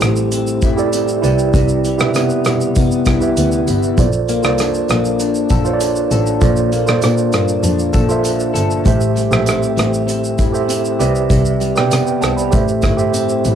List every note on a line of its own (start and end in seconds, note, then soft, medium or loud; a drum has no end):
0.00 1.23 A1 loud
0.00 1.30 A2 medium
0.00 1.85 G3 medium
0.00 0.33 C4 medium
0.00 0.76 E4 medium
0.00 0.77 G4 medium
0.00 0.78 A4 medium
0.00 1.26 C5 loud
0.00 cross-stick loud
0.00 closed hi-hat medium
0.00 tambourine soft
0.00 shaker medium
0.16 shaker medium
0.32 0.94 C4 medium
0.32 closed hi-hat medium
0.32 tambourine soft
0.32 shaker medium
0.47 shaker medium
0.62 3.07 E4 medium
0.62 kick loud
0.62 closed hi-hat medium
0.62 tambourine medium
0.62 shaker medium
0.76 1.20 E4 medium
0.76 1.21 G4 medium
0.76 1.24 A4 medium
0.76 1.23 D5 loud
0.76 shaker soft
0.93 2.15 C4 medium
0.93 closed hi-hat medium
0.93 tambourine medium
0.93 shaker medium
1.08 shaker medium
1.22 1.48 C2 loud
1.22 1.53 C3 medium
1.22 1.86 E4 loud
1.22 1.86 G4 medium
1.22 1.86 B4 medium
1.22 1.87 D5 loud
1.22 closed hi-hat medium
1.22 tambourine medium
1.22 shaker medium
1.39 shaker medium
1.54 1.91 C2 loud
1.54 3.98 C3 medium
1.54 kick loud
1.54 closed hi-hat medium
1.54 tambourine medium
1.54 shaker medium
1.68 shaker medium
1.85 2.46 G3 medium
1.85 closed hi-hat medium
1.85 shaker medium
1.98 2.12 B2 medium
1.98 3.00 E4 medium
1.98 3.00 G4 medium
1.98 3.00 B4 medium
1.98 3.01 E5 loud
1.98 cross-stick loud
1.98 shaker medium
2.14 2.40 C3 medium
2.14 2.77 B3 medium
2.14 cross-stick medium
2.14 closed hi-hat medium
2.14 tambourine loud
2.14 shaker medium
2.30 shaker medium
2.45 2.70 B2 medium
2.45 4.05 G3 medium
2.45 cross-stick medium
2.45 closed hi-hat medium
2.45 tambourine soft
2.45 shaker medium
2.61 shaker medium
2.76 3.01 C3 loud
2.76 3.37 B3 medium
2.76 kick loud
2.76 closed hi-hat medium
2.76 tambourine soft
2.76 shaker medium
2.91 shaker medium
3.06 3.31 C2 medium
3.06 3.67 E4 medium
3.06 kick loud
3.06 cross-stick loud
3.06 closed hi-hat medium
3.06 tambourine medium
3.06 shaker medium
3.20 3.84 E4 medium
3.20 3.85 G4 medium
3.20 3.85 B4 medium
3.20 3.85 E5 loud
3.20 shaker medium
3.37 3.49 D2 medium
3.37 4.05 B3 medium
3.37 closed hi-hat medium
3.37 tambourine medium
3.37 shaker medium
3.52 shaker medium
3.67 3.92 G1 medium
3.67 4.04 E4 medium
3.67 closed hi-hat medium
3.67 tambourine medium
3.67 shaker medium
3.83 shaker soft
3.97 4.35 A#1 loud
3.97 4.35 F4 medium
3.97 4.36 A4 medium
3.97 4.36 C5 medium
3.97 4.37 D5 medium
3.97 kick loud
3.97 closed hi-hat medium
3.97 tambourine medium
3.97 shaker medium
4.12 shaker medium
4.28 4.89 A#3 medium
4.28 closed hi-hat medium
4.28 tambourine soft
4.28 shaker medium
4.43 4.68 C2 medium
4.43 5.44 F4 medium
4.43 5.44 A4 medium
4.43 5.45 C5 medium
4.43 5.45 D5 loud
4.43 cross-stick loud
4.43 shaker medium
4.58 5.19 D4 medium
4.58 cross-stick medium
4.58 closed hi-hat medium
4.58 tambourine loud
4.58 shaker medium
4.74 shaker soft
4.88 5.39 A#1 loud
4.88 6.72 A#3 medium
4.88 cross-stick loud
4.88 closed hi-hat medium
4.88 tambourine soft
4.88 shaker medium
5.05 shaker medium
5.19 5.80 D4 medium
5.19 closed hi-hat medium
5.19 tambourine soft
5.19 shaker medium
5.35 shaker medium
5.49 5.99 A#1 loud
5.49 6.11 A4 medium
5.49 kick loud
5.49 closed hi-hat medium
5.49 tambourine medium
5.49 shaker medium
5.64 6.28 F4 loud
5.64 6.29 A4 medium
5.64 6.29 C5 medium
5.64 5.73 C#5 medium
5.64 shaker medium
5.74 6.33 D5 loud
5.80 7.02 D4 medium
5.80 closed hi-hat medium
5.80 tambourine medium
5.80 shaker medium
5.96 shaker medium
6.11 6.36 A1 loud
6.11 7.93 A4 medium
6.11 closed hi-hat medium
6.11 tambourine soft
6.11 shaker medium
6.26 shaker medium
6.41 6.79 A#1 loud
6.41 8.84 A#2 medium
6.41 6.79 F4 medium
6.41 6.80 A4 medium
6.41 6.80 C5 medium
6.41 6.80 D5 medium
6.41 kick loud
6.41 closed hi-hat medium
6.41 tambourine soft
6.41 shaker medium
6.56 shaker medium
6.72 7.32 A#3 medium
6.72 closed hi-hat medium
6.72 tambourine soft
6.72 shaker medium
6.86 7.00 A#2 medium
6.86 7.88 F4 medium
6.86 7.88 A4 medium
6.86 7.88 C5 medium
6.86 7.89 D5 medium
6.86 cross-stick loud
6.86 shaker medium
7.02 7.27 A#2 loud
7.02 7.62 D4 medium
7.02 cross-stick medium
7.02 closed hi-hat medium
7.02 tambourine medium
7.02 shaker medium
7.17 shaker soft
7.33 7.58 G2 medium
7.33 8.92 A#3 medium
7.33 cross-stick medium
7.33 closed hi-hat medium
7.33 tambourine soft
7.33 shaker medium
7.48 shaker medium
7.63 7.88 F2 loud
7.63 8.22 D4 medium
7.63 closed hi-hat medium
7.63 tambourine soft
7.63 shaker medium
7.79 shaker medium
7.93 8.43 A#1 loud
7.93 8.53 A4 medium
7.93 kick loud
7.93 closed hi-hat medium
7.93 tambourine medium
7.93 shaker medium
8.09 8.72 F4 loud
8.09 8.73 A4 medium
8.09 8.73 C5 medium
8.09 8.74 E5 loud
8.09 shaker medium
8.23 8.91 D4 medium
8.23 closed hi-hat medium
8.23 tambourine medium
8.23 shaker medium
8.40 shaker medium
8.54 8.85 G1 medium
8.54 9.19 A4 medium
8.54 closed hi-hat medium
8.54 tambourine soft
8.54 shaker medium
8.71 shaker medium
8.84 9.23 A1 loud
8.84 11.05 A2 medium
8.84 9.23 G4 medium
8.84 9.24 A4 medium
8.84 9.24 C5 medium
8.84 9.25 E5 loud
8.84 kick loud
8.84 closed hi-hat medium
8.84 tambourine soft
8.84 shaker medium
9.01 shaker medium
9.16 9.76 G3 medium
9.16 closed hi-hat medium
9.16 tambourine soft
9.16 shaker medium
9.31 9.56 A#1 loud
9.31 10.32 G4 medium
9.31 10.32 A4 medium
9.31 10.33 C5 medium
9.31 10.33 E5 loud
9.31 cross-stick medium
9.31 shaker medium
9.46 10.07 C4 medium
9.46 cross-stick medium
9.46 closed hi-hat medium
9.46 tambourine medium
9.46 shaker medium
9.63 shaker medium
9.77 10.96 A1 loud
9.77 11.60 G3 medium
9.77 cross-stick medium
9.77 closed hi-hat medium
9.77 tambourine soft
9.77 shaker medium
9.93 shaker medium
10.07 10.68 C4 medium
10.07 closed hi-hat medium
10.07 tambourine soft
10.07 shaker medium
10.24 shaker medium
10.38 12.83 E4 medium
10.38 kick loud
10.38 closed hi-hat medium
10.38 tambourine medium
10.38 shaker medium
10.53 10.98 G4 medium
10.53 11.00 A4 medium
10.53 11.00 C5 medium
10.53 11.00 E5 loud
10.53 shaker medium
10.68 11.91 C4 medium
10.68 closed hi-hat medium
10.68 tambourine medium
10.68 shaker medium
10.85 shaker medium
10.99 11.24 C2 medium
10.99 11.29 C3 medium
10.99 11.62 G4 loud
10.99 11.63 B4 medium
10.99 11.63 D5 medium
10.99 11.63 E5 loud
10.99 closed hi-hat medium
10.99 tambourine medium
10.99 shaker medium
11.15 shaker medium
11.30 11.67 C2 loud
11.30 12.59 C3 medium
11.30 kick loud
11.30 closed hi-hat medium
11.30 tambourine medium
11.30 shaker medium
11.45 shaker medium
11.60 12.21 G3 medium
11.60 closed hi-hat medium
11.60 tambourine soft
11.60 shaker medium
11.75 11.89 B2 loud
11.75 12.49 G4 medium
11.75 11.91 B4 medium
11.75 11.92 D5 medium
11.75 11.92 G5 loud
11.75 cross-stick loud
11.75 shaker medium
11.91 12.16 C3 loud
11.91 12.59 B3 medium
11.91 cross-stick medium
11.91 closed hi-hat medium
11.91 tambourine medium
11.91 shaker medium
12.06 12.22 B4 medium
12.06 12.21 G5 medium
12.06 shaker soft
12.22 12.46 C2 medium
12.22 12.59 G3 medium
12.22 12.37 C5 medium
12.22 12.36 A5 medium
12.22 cross-stick medium
12.22 closed hi-hat medium
12.22 tambourine soft
12.22 shaker medium
12.37 12.67 D5 medium
12.37 12.66 B5 medium
12.37 shaker medium
12.51 12.77 A1 loud
12.51 13.55 A2 medium
12.51 12.89 G4 medium
12.51 12.90 A4 medium
12.51 12.90 C5 medium
12.51 12.91 E5 medium
12.51 kick loud
12.51 closed hi-hat medium
12.51 tambourine soft
12.51 shaker medium
12.68 shaker medium
12.82 13.32 G1 medium
12.82 13.43 E4 medium
12.82 kick medium
12.82 cross-stick medium
12.82 closed hi-hat medium
12.82 tambourine medium
12.82 shaker medium
12.97 13.55 G4 loud
12.97 13.55 A4 medium
12.97 13.55 C5 medium
12.97 13.55 E5 loud
12.97 shaker soft
13.13 13.55 C4 medium
13.13 closed hi-hat medium
13.13 tambourine medium
13.13 shaker medium
13.29 shaker medium
13.45 13.55 A1 loud
13.45 13.55 E4 medium
13.45 closed hi-hat medium
13.45 tambourine soft
13.45 shaker medium